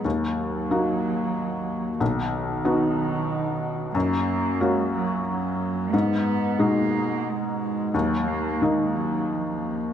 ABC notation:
X:1
M:3/4
L:1/8
Q:1/4=91
K:D#m
V:1 name="Felt piano"
D,,2 [A,DF]4 | B,,,2 [B,DF]4 | F,,2 [A,CF]4 | G,,2 [B,,G,D]4 |
D,,2 [D,A,D]4 |]
V:2 name="Cello" clef=bass
F,6 | D,6 | A,2 G, F, F,2 | B,2 A,2 G,2 |
F, A, G, F, E,2 |]